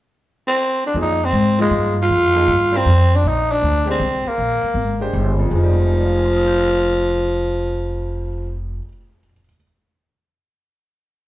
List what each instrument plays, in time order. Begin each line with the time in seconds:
0.47 tenor saxophone C4
0.87 tenor saxophone D4
0.94 upright bass F2, grand piano F3 A#3 D#4 G#4
1.02 tenor saxophone D#4
1.25 tenor saxophone C4
1.32 upright bass G#2
1.58 grand piano F3 A#3 D#4 F4, tenor saxophone G#3
1.70 upright bass G2
2.02 tenor saxophone F4
2.09 upright bass F2
2.34 grand piano F3 A#3 D#4 G#4
2.48 upright bass G2
2.72 grand piano G3 C4 F4 A#4
2.77 tenor saxophone C4
2.85 upright bass F2
3.15 tenor saxophone D4
3.23 upright bass A#1
3.28 tenor saxophone D#4
3.52 tenor saxophone D4
3.62 upright bass D2
3.85 grand piano G#3 D4 G4 C5
3.91 tenor saxophone C4
4.00 upright bass C2
4.26 tenor saxophone A#3, muted upright bass stroke
4.38 upright bass A#1
4.63 muted upright bass stroke
4.74 upright bass G#1
5.00 grand piano G#3 D4 G4 C5
5.13 upright bass G1
5.39 grand piano F2
5.45 grand piano F3
5.51 upright bass F1, tenor saxophone F3, grand piano G#3
5.58 grand piano D#4
5.64 grand piano G3
5.90 grand piano A#4
5.98 grand piano D5
6.06 grand piano F5
6.15 grand piano G#5
6.25 grand piano C6
6.36 grand piano D#6
6.47 grand piano G6
6.60 grand piano A#6